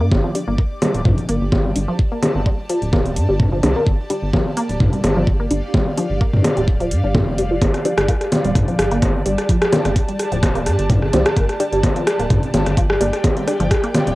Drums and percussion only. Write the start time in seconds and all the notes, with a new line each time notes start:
0.12 kick, low bongo
0.35 open hi-hat
0.58 kick
0.82 open hi-hat, low bongo
0.94 open hi-hat
1.05 kick, mid tom
1.18 open hi-hat
1.29 open hi-hat
1.52 kick, low bongo
1.76 open hi-hat
1.99 kick
2.23 open hi-hat, low bongo
2.46 kick
2.69 open hi-hat
2.82 open hi-hat
2.93 kick, low bongo
3.05 open hi-hat
3.16 open hi-hat
3.40 kick, mid tom
3.63 open hi-hat, low bongo
3.87 kick
4.10 open hi-hat
4.33 kick, low bongo
4.57 open hi-hat
4.69 open hi-hat
4.80 kick, mid tom
4.93 open hi-hat
5.04 open hi-hat, low bongo
5.27 kick
5.51 open hi-hat
5.74 kick, low bongo
5.98 open hi-hat
6.21 kick
6.34 mid tom
6.44 open hi-hat, low bongo
6.57 open hi-hat
6.68 kick
6.80 open hi-hat
6.91 open hi-hat
7.15 kick, mid tom, low bongo
7.38 open hi-hat
7.62 kick, closed hi-hat, low bongo
7.74 cross-stick, closed hi-hat
7.85 open hi-hat
7.98 cross-stick, closed hi-hat
8.08 kick, closed hi-hat
8.21 cross-stick, closed hi-hat
8.32 open hi-hat, low bongo
8.45 open hi-hat
8.55 kick, cross-stick, closed hi-hat, mid tom
8.68 open hi-hat
8.79 cross-stick, open hi-hat
8.91 closed hi-hat
9.02 kick, cross-stick, closed hi-hat, low bongo
9.26 open hi-hat
9.38 cross-stick, closed hi-hat
9.49 kick, closed hi-hat
9.62 cross-stick, closed hi-hat
9.73 open hi-hat, low bongo
9.85 cross-stick, closed hi-hat
9.96 kick, closed hi-hat
10.09 closed hi-hat
10.19 cross-stick, open hi-hat
10.32 open hi-hat
10.43 kick, cross-stick, closed hi-hat, low bongo
10.55 open hi-hat
10.66 cross-stick, open hi-hat
10.79 closed hi-hat
10.90 kick, closed hi-hat, mid tom
11.02 cross-stick
11.13 open hi-hat, low bongo
11.26 cross-stick, closed hi-hat
11.37 kick, closed hi-hat
11.49 cross-stick, closed hi-hat
11.60 open hi-hat
11.73 closed hi-hat
11.83 kick, cross-stick, closed hi-hat, low bongo
11.96 closed hi-hat
12.07 cross-stick, open hi-hat
12.19 open hi-hat
12.30 kick, cross-stick, closed hi-hat, mid tom
12.43 open hi-hat
12.54 open hi-hat, low bongo
12.66 cross-stick, closed hi-hat
12.77 kick, closed hi-hat
12.90 cross-stick
13.01 open hi-hat
13.13 cross-stick, closed hi-hat
13.24 kick, closed hi-hat, low bongo
13.37 closed hi-hat
13.48 cross-stick, open hi-hat
13.60 closed hi-hat
13.71 kick, cross-stick, closed hi-hat
13.84 closed hi-hat
13.94 cross-stick, open hi-hat, low bongo
14.07 open hi-hat